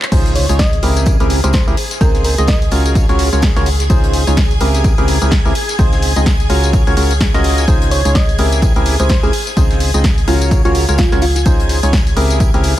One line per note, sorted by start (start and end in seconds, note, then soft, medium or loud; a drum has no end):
0.02 clap medium
0.12 0.47 C#2 loud
0.12 0.46 C#3 medium
0.12 0.46 C#4 medium
0.12 0.46 D#4 medium
0.12 0.46 F4 medium
0.12 12.79 G#4 medium
0.12 0.46 G#4 medium
0.12 0.46 C5 medium
0.12 12.79 G#6 medium
0.12 kick loud
0.12 closed hi-hat medium
0.12 crash loud
0.12 tambourine medium
0.12 impact medium
0.26 closed hi-hat soft
0.26 tambourine soft
0.35 0.57 C#5 medium
0.35 open hi-hat loud
0.35 tambourine medium
0.49 0.81 C#2 loud
0.49 0.62 C#3 medium
0.49 0.62 C#4 medium
0.49 0.62 D#4 medium
0.49 0.62 F4 medium
0.49 0.62 G#4 medium
0.49 0.62 C#5 medium
0.49 closed hi-hat medium
0.49 closed hi-hat soft
0.49 tambourine medium
0.59 0.72 D#5 medium
0.59 kick loud
0.59 snare loud
0.59 closed hi-hat medium
0.59 tambourine medium
0.73 closed hi-hat soft
0.73 tambourine soft
0.83 1.17 C#2 loud
0.83 1.17 C#3 loud
0.83 1.17 C4 medium
0.83 1.17 E4 medium
0.83 1.17 G4 medium
0.83 1.17 G#4 medium
0.83 1.17 A#4 loud
0.83 open hi-hat medium
0.83 tambourine medium
0.97 snare soft
0.97 closed hi-hat medium
0.97 tambourine medium
1.06 kick loud
1.06 closed hi-hat medium
1.06 tambourine medium
1.20 1.41 C#2 loud
1.20 1.40 C#3 loud
1.20 1.40 C4 medium
1.20 1.40 E4 medium
1.20 1.40 G4 medium
1.20 1.40 G#4 medium
1.20 1.40 A#4 loud
1.20 closed hi-hat soft
1.20 tambourine soft
1.30 open hi-hat loud
1.30 tambourine medium
1.44 1.65 C#2 loud
1.44 1.57 C#3 medium
1.44 1.57 C4 medium
1.44 1.57 E4 medium
1.44 1.57 G4 medium
1.44 1.57 G#4 medium
1.44 1.57 A#4 medium
1.44 1.50 C5 medium
1.44 closed hi-hat medium
1.44 tambourine medium
1.53 1.62 C5 medium
1.53 kick loud
1.53 snare loud
1.53 closed hi-hat medium
1.53 tambourine medium
1.67 1.74 C#2 loud
1.67 1.76 C#3 medium
1.67 1.76 C4 medium
1.67 1.76 E4 medium
1.67 1.76 G4 medium
1.67 1.76 G#4 medium
1.67 1.76 A#4 loud
1.67 tambourine soft
1.77 open hi-hat medium
1.77 tambourine medium
1.91 snare soft
1.91 closed hi-hat medium
1.91 tambourine medium
2.01 2.36 C#2 loud
2.01 2.35 C#3 medium
2.01 2.35 C4 medium
2.01 2.35 D#4 medium
2.01 2.35 F4 medium
2.01 2.35 G#4 medium
2.01 2.23 A#4 loud
2.01 2.35 C5 medium
2.01 kick loud
2.01 closed hi-hat medium
2.01 tambourine medium
2.14 snare soft
2.14 closed hi-hat soft
2.14 tambourine soft
2.24 2.37 A#4 medium
2.24 open hi-hat loud
2.24 tambourine medium
2.38 2.70 C#2 loud
2.38 2.51 C#3 medium
2.38 2.51 C4 medium
2.38 2.51 D#4 medium
2.38 2.51 F4 medium
2.38 2.51 G#4 medium
2.38 2.51 D#5 medium
2.38 closed hi-hat medium
2.38 tambourine medium
2.47 3.01 D#5 medium
2.47 kick loud
2.47 snare loud
2.47 closed hi-hat medium
2.47 tambourine medium
2.62 closed hi-hat soft
2.62 tambourine soft
2.71 3.06 C#2 loud
2.71 3.06 C#3 loud
2.71 3.06 C#4 medium
2.71 3.06 F4 medium
2.71 3.06 F#4 medium
2.71 3.06 A#4 medium
2.71 3.06 C#5 loud
2.71 open hi-hat medium
2.71 tambourine medium
2.86 closed hi-hat medium
2.86 tambourine medium
2.95 kick loud
2.95 closed hi-hat medium
2.95 tambourine medium
3.09 3.30 C#2 loud
3.09 3.29 C#3 loud
3.09 3.29 C#4 medium
3.09 3.29 F4 medium
3.09 3.29 F#4 medium
3.09 3.29 A#4 medium
3.09 3.29 C#5 loud
3.09 closed hi-hat soft
3.09 tambourine soft
3.19 open hi-hat loud
3.19 tambourine medium
3.33 3.54 C#2 medium
3.33 3.46 C#3 medium
3.33 3.46 C#4 medium
3.33 3.46 F4 medium
3.33 3.46 F#4 medium
3.33 3.46 A#4 medium
3.33 3.46 C#5 medium
3.33 closed hi-hat medium
3.33 tambourine medium
3.42 kick loud
3.42 snare loud
3.42 closed hi-hat medium
3.42 tambourine medium
3.56 3.88 C#2 loud
3.56 3.69 C#3 medium
3.56 3.69 C#4 medium
3.56 3.69 F4 medium
3.56 3.69 F#4 medium
3.56 3.69 A#4 medium
3.56 3.69 C#5 loud
3.56 snare soft
3.56 closed hi-hat soft
3.56 tambourine soft
3.66 open hi-hat loud
3.66 tambourine medium
3.80 snare medium
3.80 closed hi-hat medium
3.80 tambourine medium
3.90 4.25 C#2 loud
3.90 4.24 C#3 medium
3.90 4.24 C#4 medium
3.90 4.24 D#4 medium
3.90 4.24 F4 medium
3.90 4.24 G#4 medium
3.90 4.24 C5 medium
3.90 kick loud
3.90 closed hi-hat medium
3.90 tambourine medium
4.04 closed hi-hat soft
4.04 tambourine soft
4.13 open hi-hat loud
4.13 tambourine medium
4.27 4.59 C#2 loud
4.27 4.40 C#3 medium
4.27 4.40 C#4 medium
4.27 4.40 D#4 medium
4.27 4.40 F4 medium
4.27 4.40 G#4 medium
4.27 4.40 C#5 medium
4.27 closed hi-hat medium
4.27 closed hi-hat soft
4.27 tambourine medium
4.37 kick loud
4.37 snare loud
4.37 closed hi-hat medium
4.37 tambourine medium
4.51 closed hi-hat soft
4.51 tambourine soft
4.60 4.95 C#2 loud
4.60 4.95 C#3 medium
4.60 4.95 C4 medium
4.60 4.95 E4 medium
4.60 4.95 G4 medium
4.60 4.95 G#4 medium
4.60 4.95 A#4 loud
4.60 open hi-hat loud
4.60 tambourine medium
4.75 snare soft
4.75 closed hi-hat medium
4.75 tambourine medium
4.84 kick loud
4.84 closed hi-hat medium
4.84 tambourine medium
4.98 5.19 C#2 loud
4.98 5.18 C#3 loud
4.98 5.18 C4 medium
4.98 5.18 E4 medium
4.98 5.18 G4 medium
4.98 5.18 G#4 medium
4.98 5.18 A#4 loud
4.98 closed hi-hat soft
4.98 tambourine soft
5.08 open hi-hat loud
5.08 tambourine medium
5.22 5.43 C#2 loud
5.22 5.35 C#3 medium
5.22 5.35 C4 medium
5.22 5.35 E4 medium
5.22 5.35 G4 medium
5.22 5.35 G#4 medium
5.22 5.35 A#4 medium
5.22 closed hi-hat soft
5.22 tambourine medium
5.31 kick loud
5.31 snare loud
5.31 closed hi-hat medium
5.31 tambourine loud
5.31 tambourine medium
5.45 5.52 C#2 loud
5.45 5.54 C#3 loud
5.45 5.54 C4 medium
5.45 5.54 E4 medium
5.45 5.54 G4 medium
5.45 5.54 G#4 medium
5.45 5.54 A#4 loud
5.45 tambourine soft
5.55 open hi-hat loud
5.55 tambourine medium
5.69 snare soft
5.69 closed hi-hat medium
5.69 tambourine medium
5.79 6.13 C#2 loud
5.79 6.13 C#3 medium
5.79 6.13 C4 medium
5.79 6.13 D#4 medium
5.79 6.13 F4 medium
5.79 6.13 G#4 medium
5.79 6.13 C5 medium
5.79 kick loud
5.79 closed hi-hat medium
5.79 tambourine medium
5.79 tambourine loud
5.92 snare soft
5.92 closed hi-hat soft
5.92 tambourine soft
6.02 open hi-hat loud
6.02 tambourine medium
6.16 6.48 C#2 loud
6.16 6.29 C#3 medium
6.16 6.29 C4 medium
6.16 6.29 D#4 medium
6.16 6.29 F4 medium
6.16 6.29 G#4 medium
6.16 6.29 D#5 medium
6.16 closed hi-hat medium
6.16 tambourine medium
6.26 kick loud
6.26 snare loud
6.26 closed hi-hat medium
6.26 tambourine medium
6.40 closed hi-hat soft
6.40 tambourine soft
6.50 6.84 C#2 loud
6.50 6.84 C#3 loud
6.50 6.84 C#4 medium
6.50 6.84 F4 medium
6.50 6.84 F#4 medium
6.50 6.84 A#4 medium
6.50 6.84 C#5 loud
6.50 open hi-hat medium
6.50 tambourine medium
6.64 closed hi-hat medium
6.64 tambourine medium
6.73 kick loud
6.73 closed hi-hat medium
6.73 tambourine medium
6.87 6.95 C#2 loud
6.87 6.95 C#3 loud
6.87 6.95 C#4 medium
6.87 6.95 F4 medium
6.87 6.95 F#4 medium
6.87 6.95 A#4 medium
6.87 6.95 C#5 loud
6.87 closed hi-hat soft
6.87 tambourine soft
6.97 7.32 C#2 loud
6.97 7.13 C#3 medium
6.97 7.13 C#4 medium
6.97 7.13 F4 medium
6.97 7.13 F#4 medium
6.97 7.13 A#4 medium
6.97 7.13 C#5 medium
6.97 open hi-hat loud
6.97 tambourine medium
7.11 closed hi-hat medium
7.11 tambourine medium
7.21 kick loud
7.21 snare loud
7.21 closed hi-hat medium
7.21 tambourine medium
7.34 7.66 C#2 loud
7.34 7.65 C#3 loud
7.34 7.65 C#4 medium
7.34 7.65 F4 loud
7.34 7.65 F#4 medium
7.34 7.65 A#4 medium
7.34 7.65 D#5 loud
7.34 snare soft
7.34 closed hi-hat soft
7.34 tambourine soft
7.44 open hi-hat loud
7.44 tambourine medium
7.58 snare medium
7.58 closed hi-hat soft
7.58 tambourine medium
7.67 8.02 C#2 loud
7.67 8.02 C#3 medium
7.67 8.02 C#4 medium
7.67 8.02 D#4 medium
7.67 8.02 F4 medium
7.67 8.02 G#4 medium
7.67 8.02 C5 medium
7.67 kick loud
7.67 closed hi-hat medium
7.67 tambourine medium
7.82 closed hi-hat soft
7.82 tambourine soft
7.91 8.13 C#5 medium
7.91 open hi-hat loud
7.91 tambourine medium
8.05 8.37 C#2 loud
8.05 8.18 C#3 medium
8.05 8.18 C#4 medium
8.05 8.18 D#4 medium
8.05 8.18 F4 medium
8.05 8.18 G#4 medium
8.05 8.18 C#5 medium
8.05 closed hi-hat soft
8.05 tambourine medium
8.15 8.28 D#5 medium
8.15 kick loud
8.15 snare loud
8.15 closed hi-hat medium
8.15 tambourine medium
8.29 closed hi-hat soft
8.29 tambourine soft
8.38 8.73 C#2 loud
8.38 8.73 C#3 loud
8.38 8.73 C4 medium
8.38 8.73 E4 medium
8.38 8.73 G4 medium
8.38 8.73 G#4 medium
8.38 8.73 A#4 loud
8.38 open hi-hat medium
8.38 tambourine medium
8.52 snare soft
8.52 closed hi-hat medium
8.52 tambourine medium
8.62 kick loud
8.62 closed hi-hat medium
8.62 tambourine medium
8.76 8.97 C#2 loud
8.76 8.96 C#3 loud
8.76 8.96 C4 medium
8.76 8.96 E4 medium
8.76 8.96 G4 medium
8.76 8.96 G#4 medium
8.76 8.96 A#4 loud
8.76 closed hi-hat soft
8.76 tambourine soft
8.86 open hi-hat loud
8.86 tambourine medium
9.00 9.21 C#2 loud
9.00 9.13 C#3 medium
9.00 9.13 C4 medium
9.00 9.13 E4 medium
9.00 9.13 G4 medium
9.00 9.13 G#4 medium
9.00 9.13 A#4 medium
9.00 9.06 C5 medium
9.00 closed hi-hat soft
9.00 tambourine medium
9.09 9.18 C5 medium
9.09 kick loud
9.09 snare loud
9.09 closed hi-hat medium
9.09 tambourine medium
9.23 9.30 C#2 loud
9.23 9.32 C#3 medium
9.23 9.32 C4 medium
9.23 9.32 E4 medium
9.23 9.32 G4 medium
9.23 9.33 G#4 medium
9.23 9.32 G#4 medium
9.23 9.32 A#4 loud
9.23 tambourine soft
9.33 open hi-hat loud
9.33 tambourine medium
9.47 snare soft
9.47 closed hi-hat soft
9.47 tambourine medium
9.57 9.91 C#2 loud
9.57 9.91 C#3 medium
9.57 9.91 C4 medium
9.57 9.91 D#4 medium
9.57 9.91 F4 medium
9.57 9.91 G#4 medium
9.57 9.91 C5 medium
9.57 kick loud
9.57 closed hi-hat medium
9.57 tambourine medium
9.57 tambourine loud
9.71 snare soft
9.71 closed hi-hat soft
9.71 tambourine soft
9.80 open hi-hat loud
9.80 tambourine medium
9.94 10.26 C#2 loud
9.94 10.07 C#3 medium
9.94 10.07 C4 medium
9.94 10.07 D#4 medium
9.94 10.07 F4 medium
9.94 10.07 G#4 medium
9.94 10.07 D#5 medium
9.94 closed hi-hat medium
9.94 tambourine medium
10.04 kick loud
10.04 snare loud
10.04 closed hi-hat medium
10.04 tambourine medium
10.18 closed hi-hat soft
10.18 tambourine soft
10.27 10.62 C#2 loud
10.27 10.62 C#3 loud
10.27 10.62 C#4 medium
10.27 10.41 F4 medium
10.27 10.62 F4 medium
10.27 10.62 F#4 medium
10.27 10.62 A#4 medium
10.27 10.62 C#5 loud
10.27 open hi-hat medium
10.27 tambourine medium
10.41 closed hi-hat medium
10.41 tambourine medium
10.51 kick loud
10.51 closed hi-hat medium
10.51 tambourine medium
10.65 10.86 C#2 loud
10.65 10.85 C#3 loud
10.65 10.85 C#4 medium
10.65 10.96 F4 medium
10.65 10.85 F4 medium
10.65 10.85 F#4 medium
10.65 10.85 A#4 medium
10.65 10.85 C#5 loud
10.65 closed hi-hat soft
10.65 tambourine soft
10.75 open hi-hat loud
10.75 tambourine medium
10.89 11.09 C#2 loud
10.89 11.01 C#3 medium
10.89 11.01 C#4 medium
10.89 11.01 F4 medium
10.89 11.01 F#4 medium
10.89 11.01 A#4 medium
10.89 11.01 C#5 medium
10.89 closed hi-hat medium
10.89 tambourine medium
10.98 11.11 F4 medium
10.98 kick loud
10.98 snare loud
10.98 closed hi-hat medium
10.98 tambourine medium
11.12 11.44 C#2 loud
11.12 11.25 C#3 medium
11.12 11.25 C#4 medium
11.12 11.25 F4 medium
11.12 11.25 F#4 medium
11.12 11.25 A#4 medium
11.12 11.25 C#5 loud
11.12 snare soft
11.12 closed hi-hat soft
11.12 tambourine soft
11.22 11.31 F4 medium
11.22 open hi-hat medium
11.22 tambourine medium
11.35 11.42 F4 medium
11.35 snare medium
11.35 closed hi-hat medium
11.35 tambourine medium
11.46 11.80 C#2 loud
11.46 11.80 C#3 medium
11.46 11.80 C#4 medium
11.46 11.80 D#4 medium
11.46 11.80 F4 medium
11.46 11.80 G#4 medium
11.46 11.80 C5 medium
11.46 kick loud
11.46 closed hi-hat medium
11.46 tambourine medium
11.60 closed hi-hat soft
11.60 tambourine soft
11.69 open hi-hat loud
11.69 tambourine medium
11.83 12.15 C#2 loud
11.83 11.96 C#3 medium
11.83 11.96 C#4 medium
11.83 11.96 D#4 medium
11.83 11.96 F4 medium
11.83 11.96 G#4 medium
11.83 11.96 C#5 medium
11.83 closed hi-hat soft
11.83 closed hi-hat medium
11.83 tambourine medium
11.93 kick loud
11.93 snare loud
11.93 closed hi-hat medium
11.93 tambourine medium
12.07 closed hi-hat soft
12.07 tambourine soft
12.16 12.51 C#2 loud
12.16 12.51 C#3 loud
12.16 12.51 C4 medium
12.16 12.51 E4 medium
12.16 12.51 G4 medium
12.16 12.51 G#4 medium
12.16 12.51 A#4 loud
12.16 open hi-hat medium
12.16 tambourine medium
12.30 snare soft
12.30 closed hi-hat medium
12.30 tambourine medium
12.40 kick loud
12.40 closed hi-hat medium
12.40 tambourine medium
12.54 12.75 C#2 loud
12.54 12.74 C#3 loud
12.54 12.74 C4 medium
12.54 12.74 E4 medium
12.54 12.74 G4 medium
12.54 12.74 G#4 medium
12.54 12.74 A#4 loud
12.54 closed hi-hat soft
12.54 tambourine soft
12.64 open hi-hat loud
12.64 tambourine medium